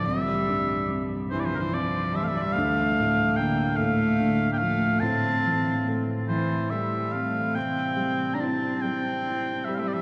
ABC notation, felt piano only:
X:1
M:6/8
L:1/8
Q:3/8=48
K:Cmix
V:1 name="Felt piano" clef=bass
C,, G,, C, G,, C, E, | D,, A,, D, A,, D, F, | A,, E, A, E, A, C | C, G, E G, E G |]